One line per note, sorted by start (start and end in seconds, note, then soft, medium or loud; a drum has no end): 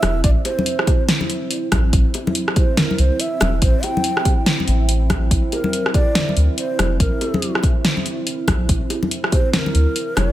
0.00 0.23 E1 medium
0.00 10.32 C4 medium
0.00 10.32 E4 medium
0.00 0.21 E5 loud
0.00 cross-stick medium
0.00 closed hi-hat medium
0.00 high bongo medium
0.00 high conga medium
0.24 0.36 A1 loud
0.24 0.30 D5 loud
0.24 kick loud
0.24 closed hi-hat medium
0.45 1.05 C5 medium
0.45 closed hi-hat medium
0.45 high bongo medium
0.59 high conga medium
0.66 closed hi-hat medium
0.79 cross-stick medium
0.87 kick loud
0.87 closed hi-hat medium
0.87 high bongo medium
1.09 snare loud
1.09 closed hi-hat medium
1.21 high conga medium
1.30 closed hi-hat medium
1.51 closed hi-hat medium
1.72 1.92 A1 medium
1.72 kick medium
1.72 cross-stick medium
1.72 closed hi-hat medium
1.72 high conga loud
1.93 2.05 A1 loud
1.93 kick loud
1.93 closed hi-hat medium
2.14 closed hi-hat medium
2.14 high bongo medium
2.27 high conga medium
2.35 closed hi-hat medium
2.48 cross-stick medium
2.56 2.80 C5 medium
2.56 kick loud
2.56 closed hi-hat medium
2.56 high bongo medium
2.77 3.01 A#4 medium
2.77 snare loud
2.77 closed hi-hat medium
2.77 low conga medium
2.91 high conga medium
2.98 3.10 C2 medium
2.98 3.22 C5 medium
2.98 closed hi-hat medium
3.20 3.62 E5 loud
3.20 closed hi-hat medium
3.40 3.61 E1 medium
3.40 cross-stick medium
3.40 closed hi-hat medium
3.40 high bongo medium
3.40 high conga loud
3.62 3.74 A1 loud
3.62 3.85 C5 loud
3.62 kick loud
3.62 closed hi-hat medium
3.83 4.47 G5 loud
3.83 closed hi-hat medium
3.83 high bongo medium
3.97 high conga medium
4.04 closed hi-hat medium
4.17 cross-stick medium
4.25 kick loud
4.25 closed hi-hat medium
4.25 high bongo medium
4.46 snare loud
4.46 closed hi-hat medium
4.60 high conga medium
4.68 5.30 A1 medium
4.68 closed hi-hat medium
4.89 closed hi-hat medium
5.10 kick medium
5.10 cross-stick medium
5.10 closed hi-hat medium
5.10 high conga medium
5.31 5.43 A#1 loud
5.31 kick loud
5.31 closed hi-hat medium
5.52 5.92 A#4 loud
5.52 closed hi-hat medium
5.52 high bongo medium
5.64 high conga medium
5.73 closed hi-hat medium
5.86 cross-stick medium
5.94 6.34 D5 loud
5.94 kick loud
5.94 closed hi-hat medium
5.94 high bongo soft
6.15 snare loud
6.15 closed hi-hat medium
6.15 low conga medium
6.29 high conga medium
6.37 6.48 D2 medium
6.37 closed hi-hat medium
6.58 6.97 C5 loud
6.58 closed hi-hat medium
6.79 6.99 F1 medium
6.79 cross-stick medium
6.79 closed hi-hat medium
6.79 high bongo soft
6.79 high conga medium
7.00 7.12 A#1 loud
7.00 7.60 A#4 medium
7.00 kick loud
7.00 closed hi-hat medium
7.21 closed hi-hat soft
7.21 high bongo medium
7.34 high conga medium
7.42 closed hi-hat medium
7.55 cross-stick medium
7.63 kick loud
7.63 closed hi-hat medium
7.63 high bongo medium
7.85 snare loud
7.85 closed hi-hat medium
7.97 high conga medium
8.06 closed hi-hat medium
8.27 closed hi-hat medium
8.48 8.68 A#1 medium
8.48 kick medium
8.48 cross-stick medium
8.48 closed hi-hat medium
8.48 high conga loud
8.69 8.81 A#1 loud
8.69 kick loud
8.69 closed hi-hat medium
8.90 closed hi-hat medium
8.90 high bongo medium
9.03 high conga medium
9.11 closed hi-hat medium
9.24 cross-stick medium
9.32 9.52 C5 loud
9.32 kick loud
9.32 closed hi-hat medium
9.32 high bongo medium
9.53 9.59 C5 medium
9.53 snare loud
9.53 closed hi-hat medium
9.53 low conga medium
9.58 10.18 A#4 loud
9.66 high conga medium
9.75 9.86 D2 medium
9.75 closed hi-hat medium
9.96 closed hi-hat medium
10.17 10.32 F1 medium
10.17 10.32 C#5 loud
10.17 cross-stick medium
10.17 closed hi-hat medium
10.17 high bongo medium
10.17 high conga medium